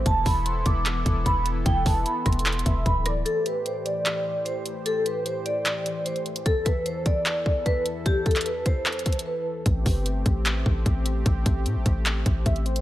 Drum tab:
HH |x-----------o-----------x-----------x-----------x-----------x-----------x-----------x-----------|x-----------o-----------x-----------x---x---x---x---x---x---x-----------x-----------x-----------|x-----------x-----------x-----------x-----------x-----------------------x-----------x-----------|x-----------x-----------x-----------x-----------x-----------x-----------x-----x-----x-----x-----|
CP |------------------------------------------------x-----------------------------------------------|------------------------------------------------x-----------------------------------------------|------------------------------------------------x-----------------------------------------------|------------------------------------------------x-----------------------------------------------|
SD |------------------------------------------------------------------------------------------------|------------------------------------r-----------------------------------------------r-----------|------------------------------------------------------------------------------------------------|------------------------------------------------------------------------------------------------|
BD |o-----------o-----------------------o-----------------------o-----------o-----------------------|o-----------o-----------------------o-----------------------o-----------o-----------------------|------------------------------------------------------------------------------------------------|------------------------------------------------------------------------------------------------|

HH |x-----------x-----------x-----------x-----------x-----------------------x-----------x-----------|x-----------x--x--x--x--x-----------x-----------x---x---x---x---x---x---------------------------|x-----------o-----------x-----------x-----------x-----------------------x-----------x-----------|x-----------x-----------x-----------x-----------x-----------x-----------x-----x-----x-----x-----|
CP |------------------------------------------------x-----------------------------------------------|------------------x-----------------------------x-----------------------------------------------|------------------------------------------------x-----------------------------------------------|------------------------------------------------x-----------------------------------------------|
SD |------------------------------------------------------------------------------------------------|------------------------------------------------------------------------------------------------|------------------------------------------------------------------------------------------------|------------------------------------------------------------------------------------------------|
BD |o-----------o-----------------------o-----------------------o-----------o-----------------------|o-----------o-----------------------o-----------------------o-----------------------------------|o-----------o-----------------------o-----------------------o-----------o-----------------------|o-----------o-----------------------o-----------------------o-----------o-----------------------|